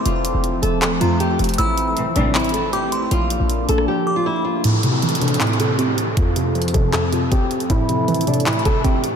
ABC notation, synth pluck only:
X:1
M:4/4
L:1/8
Q:1/4=157
K:Aphr
V:1 name="Synth pluck" clef=bass
z8 | z8 | z8 | A,, C, E, C, A,, C, C2 |
F,, C, F, C, F,, C, C2 | A,, C, E, C, A,, C, C2 |]